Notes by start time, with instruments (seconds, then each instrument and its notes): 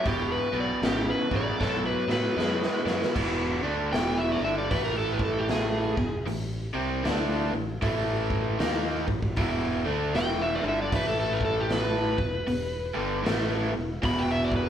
0.03 fingered electric bass E1, overdriven electric guitar E2 B2, electric slide guitar G4, kick, open hi-hat
0.32 electric slide guitar B4
0.52 fingered electric bass B1, overdriven electric guitar E2 B2
0.60 electric slide guitar D5
0.82 fingered electric bass G#1, overdriven electric guitar E2 C#3, electric slide guitar G4, snare, open hi-hat
1.10 electric slide guitar B4
1.31 fingered electric bass A1, overdriven electric guitar E2 C#3, kick
1.36 electric slide guitar D5
1.60 fingered electric bass B1, overdriven electric guitar B2 F#3, electric slide guitar A4, kick, snare
1.86 electric slide guitar B4
2.07 fingered electric bass A2, overdriven electric guitar B2 F#3, snare
2.12 electric slide guitar B4
2.37 fingered electric bass F#2, overdriven electric guitar B2 G#3, snare
2.63 snare
2.85 fingered electric bass F#2, overdriven electric guitar B2 G#3, snare
3.02 snare
3.14 fingered electric bass E1, overdriven electric guitar E2 B2 E3, kick, crash
3.63 fingered electric bass D2, overdriven electric guitar D3 A3 D4
3.92 fingered electric bass E1, overdriven electric guitar E2 B2 E3, electric slide guitar G5, snare, open hi-hat
4.18 electric slide guitar E5
4.32 electric slide guitar D5
4.41 fingered electric bass G1, overdriven electric guitar G2 D3 G3, electric slide guitar E5
4.58 electric slide guitar D5
4.70 fingered electric bass A1, overdriven electric guitar A2 E3 A3, electric slide guitar B4, kick, open hi-hat
4.85 electric slide guitar A#4
4.98 electric slide guitar A4
5.13 electric slide guitar B4
5.19 kick
5.25 electric slide guitar A4
5.39 electric slide guitar G4
5.49 electric slide guitar G#4, snare, open hi-hat
5.96 fingered electric bass E1, overdriven electric guitar E2 B2, kick
6.26 fingered electric bass A1, overdriven electric guitar A2 E3, open hi-hat
6.73 fingered electric bass C2, overdriven electric guitar C3 G3 C4
7.03 fingered electric bass D2, overdriven electric guitar D3 A3 D4, snare, open hi-hat
7.52 fingered electric bass A1, overdriven electric guitar A2 E3
7.82 fingered electric bass A1, overdriven electric guitar A2 E3 A3, kick, open hi-hat
8.30 kick
8.59 fingered electric bass D#2, overdriven electric guitar D#3 A#3 D#4, snare, open hi-hat
9.07 fingered electric bass A1, overdriven electric guitar A2 E3, kick
9.23 kick
9.36 fingered electric bass E1, overdriven electric guitar E2 B2 E3, kick, open hi-hat
9.85 fingered electric bass D2, overdriven electric guitar D3 A3 D4
10.14 fingered electric bass E1, overdriven electric guitar E2 B2 E3, electric slide guitar G5, snare, open hi-hat
10.41 electric slide guitar E5
10.55 electric slide guitar D5
10.62 fingered electric bass G1, overdriven electric guitar G2 D3 G3
10.68 electric slide guitar E5
10.82 electric slide guitar D5
10.92 fingered electric bass A1, overdriven electric guitar A2 E3 A3, kick, open hi-hat
10.96 electric slide guitar B4
11.09 electric slide guitar A4
11.20 electric slide guitar A4
11.33 electric slide guitar B4
11.41 kick
11.45 electric slide guitar A4
11.60 electric slide guitar G4
11.70 electric slide guitar B4, snare, open hi-hat
12.18 fingered electric bass E1, overdriven electric guitar E2 B2, kick
12.47 fingered electric bass E1, overdriven electric guitar E2 B2, open hi-hat
12.95 fingered electric bass G1, overdriven electric guitar G2 D3 G3
13.24 fingered electric bass A1, overdriven electric guitar A2 E3 A3, snare, open hi-hat
13.73 fingered electric bass E1, overdriven electric guitar E2 B2
14.02 fingered electric bass E1, overdriven electric guitar E2 B2 E3, electric slide guitar B5, kick, open hi-hat
14.19 electric slide guitar G5
14.31 electric slide guitar E5
14.44 electric slide guitar D5
14.52 kick
14.56 electric slide guitar B4